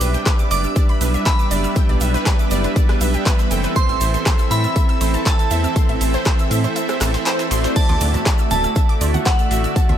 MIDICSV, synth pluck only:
0, 0, Header, 1, 2, 480
1, 0, Start_track
1, 0, Tempo, 500000
1, 1690, Time_signature, 4, 2, 24, 8
1, 9579, End_track
2, 0, Start_track
2, 0, Title_t, "Synth pluck"
2, 0, Program_c, 0, 84
2, 10, Note_on_c, 0, 71, 73
2, 43, Note_off_c, 0, 71, 0
2, 137, Note_on_c, 0, 79, 77
2, 211, Note_off_c, 0, 79, 0
2, 250, Note_on_c, 0, 71, 85
2, 305, Note_off_c, 0, 71, 0
2, 377, Note_on_c, 0, 86, 79
2, 406, Note_off_c, 0, 86, 0
2, 491, Note_on_c, 0, 74, 101
2, 546, Note_off_c, 0, 74, 0
2, 618, Note_on_c, 0, 88, 79
2, 667, Note_off_c, 0, 88, 0
2, 731, Note_on_c, 0, 74, 85
2, 814, Note_off_c, 0, 74, 0
2, 858, Note_on_c, 0, 83, 103
2, 907, Note_off_c, 0, 83, 0
2, 971, Note_on_c, 0, 71, 76
2, 1004, Note_off_c, 0, 71, 0
2, 1097, Note_on_c, 0, 76, 79
2, 1171, Note_off_c, 0, 76, 0
2, 1210, Note_on_c, 0, 88, 104
2, 1265, Note_off_c, 0, 88, 0
2, 1337, Note_on_c, 0, 86, 79
2, 1366, Note_off_c, 0, 86, 0
2, 1450, Note_on_c, 0, 74, 104
2, 1505, Note_off_c, 0, 74, 0
2, 1577, Note_on_c, 0, 88, 78
2, 1626, Note_off_c, 0, 88, 0
2, 1690, Note_on_c, 0, 79, 82
2, 1723, Note_off_c, 0, 79, 0
2, 1817, Note_on_c, 0, 74, 78
2, 1891, Note_off_c, 0, 74, 0
2, 1930, Note_on_c, 0, 76, 73
2, 2013, Note_off_c, 0, 76, 0
2, 2057, Note_on_c, 0, 71, 103
2, 2106, Note_off_c, 0, 71, 0
2, 2170, Note_on_c, 0, 71, 99
2, 2225, Note_off_c, 0, 71, 0
2, 2298, Note_on_c, 0, 86, 79
2, 2327, Note_off_c, 0, 86, 0
2, 2411, Note_on_c, 0, 74, 105
2, 2466, Note_off_c, 0, 74, 0
2, 2538, Note_on_c, 0, 71, 75
2, 2587, Note_off_c, 0, 71, 0
2, 2651, Note_on_c, 0, 74, 84
2, 2684, Note_off_c, 0, 74, 0
2, 2778, Note_on_c, 0, 71, 77
2, 2827, Note_off_c, 0, 71, 0
2, 2891, Note_on_c, 0, 76, 76
2, 2973, Note_off_c, 0, 76, 0
2, 3017, Note_on_c, 0, 79, 75
2, 3066, Note_off_c, 0, 79, 0
2, 3130, Note_on_c, 0, 71, 108
2, 3185, Note_off_c, 0, 71, 0
2, 3257, Note_on_c, 0, 83, 82
2, 3331, Note_off_c, 0, 83, 0
2, 3369, Note_on_c, 0, 79, 103
2, 3425, Note_off_c, 0, 79, 0
2, 3496, Note_on_c, 0, 71, 76
2, 3546, Note_off_c, 0, 71, 0
2, 3610, Note_on_c, 0, 72, 88
2, 3693, Note_off_c, 0, 72, 0
2, 3736, Note_on_c, 0, 88, 105
2, 3785, Note_off_c, 0, 88, 0
2, 3849, Note_on_c, 0, 72, 74
2, 3883, Note_off_c, 0, 72, 0
2, 3975, Note_on_c, 0, 84, 76
2, 4050, Note_off_c, 0, 84, 0
2, 4089, Note_on_c, 0, 72, 84
2, 4145, Note_off_c, 0, 72, 0
2, 4215, Note_on_c, 0, 88, 78
2, 4245, Note_off_c, 0, 88, 0
2, 4329, Note_on_c, 0, 76, 98
2, 4385, Note_off_c, 0, 76, 0
2, 4456, Note_on_c, 0, 88, 77
2, 4505, Note_off_c, 0, 88, 0
2, 4570, Note_on_c, 0, 76, 83
2, 4653, Note_off_c, 0, 76, 0
2, 4696, Note_on_c, 0, 88, 99
2, 4746, Note_off_c, 0, 88, 0
2, 4808, Note_on_c, 0, 72, 77
2, 4842, Note_off_c, 0, 72, 0
2, 4937, Note_on_c, 0, 81, 80
2, 5011, Note_off_c, 0, 81, 0
2, 5049, Note_on_c, 0, 88, 105
2, 5105, Note_off_c, 0, 88, 0
2, 5177, Note_on_c, 0, 88, 81
2, 5207, Note_off_c, 0, 88, 0
2, 5289, Note_on_c, 0, 76, 104
2, 5345, Note_off_c, 0, 76, 0
2, 5417, Note_on_c, 0, 88, 75
2, 5466, Note_off_c, 0, 88, 0
2, 5529, Note_on_c, 0, 84, 83
2, 5563, Note_off_c, 0, 84, 0
2, 5656, Note_on_c, 0, 76, 75
2, 5730, Note_off_c, 0, 76, 0
2, 5769, Note_on_c, 0, 81, 75
2, 5852, Note_off_c, 0, 81, 0
2, 5896, Note_on_c, 0, 72, 100
2, 5946, Note_off_c, 0, 72, 0
2, 6009, Note_on_c, 0, 72, 100
2, 6065, Note_off_c, 0, 72, 0
2, 6137, Note_on_c, 0, 88, 81
2, 6166, Note_off_c, 0, 88, 0
2, 6250, Note_on_c, 0, 76, 103
2, 6305, Note_off_c, 0, 76, 0
2, 6378, Note_on_c, 0, 72, 75
2, 6426, Note_off_c, 0, 72, 0
2, 6490, Note_on_c, 0, 76, 84
2, 6523, Note_off_c, 0, 76, 0
2, 6617, Note_on_c, 0, 72, 73
2, 6666, Note_off_c, 0, 72, 0
2, 6730, Note_on_c, 0, 81, 79
2, 6813, Note_off_c, 0, 81, 0
2, 6856, Note_on_c, 0, 84, 75
2, 6906, Note_off_c, 0, 84, 0
2, 6970, Note_on_c, 0, 72, 103
2, 7025, Note_off_c, 0, 72, 0
2, 7097, Note_on_c, 0, 88, 78
2, 7171, Note_off_c, 0, 88, 0
2, 7209, Note_on_c, 0, 84, 106
2, 7265, Note_off_c, 0, 84, 0
2, 7336, Note_on_c, 0, 72, 77
2, 7386, Note_off_c, 0, 72, 0
2, 7450, Note_on_c, 0, 74, 86
2, 7533, Note_off_c, 0, 74, 0
2, 7577, Note_on_c, 0, 86, 103
2, 7626, Note_off_c, 0, 86, 0
2, 7690, Note_on_c, 0, 74, 76
2, 7723, Note_off_c, 0, 74, 0
2, 7817, Note_on_c, 0, 81, 76
2, 7891, Note_off_c, 0, 81, 0
2, 7929, Note_on_c, 0, 74, 82
2, 7985, Note_off_c, 0, 74, 0
2, 8055, Note_on_c, 0, 88, 75
2, 8086, Note_off_c, 0, 88, 0
2, 8168, Note_on_c, 0, 76, 99
2, 8224, Note_off_c, 0, 76, 0
2, 8295, Note_on_c, 0, 88, 77
2, 8345, Note_off_c, 0, 88, 0
2, 8409, Note_on_c, 0, 76, 84
2, 8492, Note_off_c, 0, 76, 0
2, 8535, Note_on_c, 0, 86, 101
2, 8585, Note_off_c, 0, 86, 0
2, 8648, Note_on_c, 0, 74, 80
2, 8682, Note_off_c, 0, 74, 0
2, 8774, Note_on_c, 0, 78, 78
2, 8850, Note_off_c, 0, 78, 0
2, 8888, Note_on_c, 0, 88, 100
2, 8945, Note_off_c, 0, 88, 0
2, 9016, Note_on_c, 0, 88, 77
2, 9046, Note_off_c, 0, 88, 0
2, 9128, Note_on_c, 0, 76, 106
2, 9184, Note_off_c, 0, 76, 0
2, 9255, Note_on_c, 0, 88, 79
2, 9305, Note_off_c, 0, 88, 0
2, 9368, Note_on_c, 0, 81, 84
2, 9402, Note_off_c, 0, 81, 0
2, 9496, Note_on_c, 0, 76, 78
2, 9570, Note_off_c, 0, 76, 0
2, 9579, End_track
0, 0, End_of_file